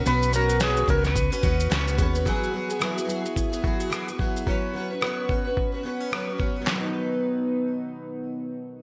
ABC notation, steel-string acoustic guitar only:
X:1
M:4/4
L:1/16
Q:"Swing 16ths" 1/4=109
K:B
V:1 name="Steel-string acoustic guitar"
B,2 C2 F2 B,2 B, C F2 C2 B,2 | [F,G]2 B,2 E2 G2 E2 F G B,2 E2 | [F,C]2 F,2 B,2 C2 B,2 B, C F,2 B,2 | [F,B,D]16 |]